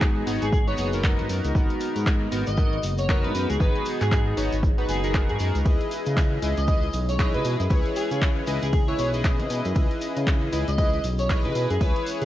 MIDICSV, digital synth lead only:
0, 0, Header, 1, 2, 480
1, 0, Start_track
1, 0, Key_signature, 5, "minor"
1, 0, Tempo, 512821
1, 1453, Time_signature, 4, 2, 24, 8
1, 11466, End_track
2, 0, Start_track
2, 0, Title_t, "Digital synth lead"
2, 0, Program_c, 0, 84
2, 394, Note_on_c, 0, 68, 93
2, 590, Note_off_c, 0, 68, 0
2, 634, Note_on_c, 0, 73, 94
2, 697, Note_off_c, 0, 73, 0
2, 731, Note_on_c, 0, 73, 77
2, 823, Note_off_c, 0, 73, 0
2, 2314, Note_on_c, 0, 75, 93
2, 2652, Note_off_c, 0, 75, 0
2, 2793, Note_on_c, 0, 73, 96
2, 2990, Note_off_c, 0, 73, 0
2, 3034, Note_on_c, 0, 71, 93
2, 3231, Note_off_c, 0, 71, 0
2, 3273, Note_on_c, 0, 68, 89
2, 3352, Note_off_c, 0, 68, 0
2, 3371, Note_on_c, 0, 71, 98
2, 3582, Note_off_c, 0, 71, 0
2, 3753, Note_on_c, 0, 68, 96
2, 3817, Note_off_c, 0, 68, 0
2, 3851, Note_on_c, 0, 68, 75
2, 3942, Note_off_c, 0, 68, 0
2, 4571, Note_on_c, 0, 68, 94
2, 4782, Note_off_c, 0, 68, 0
2, 4953, Note_on_c, 0, 68, 90
2, 5017, Note_off_c, 0, 68, 0
2, 5050, Note_on_c, 0, 68, 81
2, 5142, Note_off_c, 0, 68, 0
2, 6153, Note_on_c, 0, 75, 93
2, 6492, Note_off_c, 0, 75, 0
2, 6635, Note_on_c, 0, 73, 95
2, 6831, Note_off_c, 0, 73, 0
2, 6874, Note_on_c, 0, 71, 96
2, 7070, Note_off_c, 0, 71, 0
2, 7453, Note_on_c, 0, 68, 92
2, 7662, Note_off_c, 0, 68, 0
2, 8073, Note_on_c, 0, 68, 90
2, 8270, Note_off_c, 0, 68, 0
2, 8313, Note_on_c, 0, 73, 91
2, 8377, Note_off_c, 0, 73, 0
2, 8412, Note_on_c, 0, 73, 81
2, 8503, Note_off_c, 0, 73, 0
2, 9996, Note_on_c, 0, 75, 96
2, 10333, Note_off_c, 0, 75, 0
2, 10473, Note_on_c, 0, 73, 97
2, 10670, Note_off_c, 0, 73, 0
2, 10713, Note_on_c, 0, 71, 95
2, 10910, Note_off_c, 0, 71, 0
2, 10952, Note_on_c, 0, 68, 89
2, 11032, Note_off_c, 0, 68, 0
2, 11051, Note_on_c, 0, 71, 96
2, 11262, Note_off_c, 0, 71, 0
2, 11433, Note_on_c, 0, 68, 88
2, 11466, Note_off_c, 0, 68, 0
2, 11466, End_track
0, 0, End_of_file